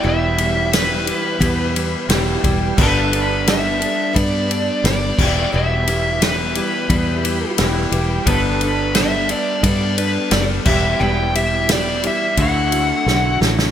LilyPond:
<<
  \new Staff \with { instrumentName = "Lead electric guitar" } { \time 4/4 \key g \major \tempo 4 = 88 e''4 b'2 r4 | b'4 e''4 d''4 d''4 | e''4 b'2 r4 | b'4 e''8 d''8 d''8 b'8 d''8 e''8 |
g''8 e''8 d''8 e''8 fis''4. r8 | }
  \new Staff \with { instrumentName = "Tonewheel organ" } { \time 4/4 \key g \major <b e' g' b'>1 | <d' g' a'>2.~ <d' g' a'>8 <b e' g' b'>8~ | <b e' g' b'>1 | <b d' g' a'>2.~ <b d' g' a'>8 <b e' g' b'>8~ |
<b e' g' b'>2 <d' a'>2 | }
  \new Staff \with { instrumentName = "Steel-string acoustic guitar" } { \time 4/4 \key g \major <e, b, e g e' g'>8 <e g e' g'>8 <e g e' g'>8 <e g e' g'>8 <e, b, e g e' g'>8 <e g e' g'>8 <e g e' g'>8 <e g e' g'>8 | <g b d' a'>8 <b d' a'>8 <g b d' a'>8 <b d' a'>8 <g b d' a'>8 <b d' a'>8 <g b d' a'>8 <e g e' g'>8 | <e, b, e g e' g'>8 <e g e' g'>8 <e g e' g'>8 <e g e' g'>8 <e, b, e g e' g'>8 <e g e' g'>8 <e g e' g'>8 <e g e' g'>8 | <g b d' a'>8 <b d' a'>8 <g b d' a'>8 <b d' a'>8 <g b d' a'>8 <b d' a'>8 <g b d' a'>8 <e g e' g'>8 |
<e, b, e g e' g'>8 <e g e' g'>8 <e g e' g'>8 <e g e' g'>8 <d a e' fis'>8 <a e' fis'>8 <d a e' fis'>8 <a e' fis'>8 | }
  \new Staff \with { instrumentName = "Clean electric guitar" } { \clef bass \time 4/4 \key g \major <e, b, e g e' g'>2. <e, b, e g e' g'>8 r8 | <g b d' a'>2.~ <g b d' a'>8 <e, b, e g e' g'>8~ | <e, b, e g e' g'>2. <e, b, e g e' g'>8 r8 | <g b d' a'>2.~ <g b d' a'>8 <e, b, e g e' g'>8~ |
<e, b, e g e' g'>2 <d a e' fis'>2 | }
  \new Staff \with { instrumentName = "Fingered electric bass" } { \clef bass \time 4/4 \key g \major e,,2 e,4 e,,8 e,,8 | g,,2 g,4 g,,8 e,,8 | e,,2 e,4 e,,8 e,,8 | g,,2 g,4 fis,,8 e,,8 |
e,,2 d,4 b,,8 a,,8 | }
  \new DrumStaff \with { instrumentName = "Drums" } \drummode { \time 4/4 r8 cymr8 <cymr sn>8 cymr8 <bd cymr>8 cymr8 <cymr sn>8 <bd cymr>8 | <cymc bd>8 cymr8 <cymr sn>8 cymr8 <bd cymr>8 cymr8 <cymr sn>8 <cymc bd>8 | r8 cymr8 <cymr sn>8 cymr8 <bd cymr>8 cymr8 <cymr sn>8 cymr8 | <bd cymr>8 cymr8 <cymr sn>8 cymr8 <bd cymr>8 cymr8 <cymr sn>8 <cymc bd>8 |
r8 cymr8 <cymr sn>8 cymr8 <bd cymr>8 cymr8 sn8 sn16 sn16 | }
>>